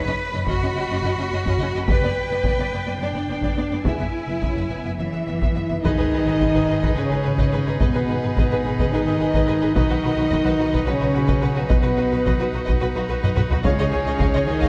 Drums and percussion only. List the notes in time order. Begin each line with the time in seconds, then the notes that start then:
0.47 taiko
1.45 taiko
1.88 taiko
2.44 taiko
3.42 taiko
3.85 taiko
4.42 taiko
5.42 taiko
5.85 taiko
6.42 taiko
6.83 taiko
7.38 taiko
7.81 taiko
8.37 taiko
8.79 taiko
9.34 taiko
9.76 taiko
10.32 taiko
10.74 taiko
11.29 taiko
11.70 taiko
12.26 taiko
12.68 taiko
13.24 taiko low-mid
13.37 taiko low-mid
13.51 taiko low
13.65 taiko
14.20 taiko
14.34 taiko low
14.62 taiko